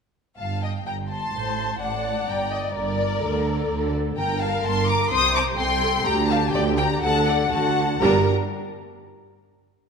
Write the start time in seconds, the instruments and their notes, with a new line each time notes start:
0.38 double bass section G1, cello section G2, violin section F5 A5
0.63 violin section D#5 G5
0.85 double bass section G1, cello section G2, violin section G5 A#5
1.10 violin section A5 C6
1.33 double bass section A1, cello section A2, viola section C5
1.80 double bass section A1, cello section A2, viola section D5, violin section F#5 A5
2.28 double bass section G1, cello section G2, violin section G5 A#5
2.52 violin section D#5 G5
2.76 double bass section G1, cello section G2, violin section A#4 D5
3.23 double bass section D2, cello section D3, viola section A4
3.70 double bass section D2, cello section D3
4.17 double bass section G1, cello section G2, viola section A#4, violin section G5 A#5
4.41 violin section F5 A5
4.63 double bass section G1, cello section G2, violin section A5 C6
4.88 violin section A#5 D6
5.10 double bass section C2, cello section C3, viola section C5, violin section C6 D#6
5.35 violin section A#5 D6
5.58 double bass section C2, cello section C3, viola section A4, violin section G5 C6
6.05 double bass section D2, cello section D3, viola section G4, violin section G5 A#5
6.30 violin section F5 A5
6.54 double bass section D2, cello section D3, violin section D5 G5
6.78 violin section G5 A#5
7.01 double bass section D2, cello section D3, viola section A4, violin section F#5 A5
7.27 violin section D5 F#5
7.51 double bass section D2, cello section D3, viola section F#4, violin section F#5 A5
8.01 double bass section G1, cello section G2, viola section G3 D4, violin section A#4 A#5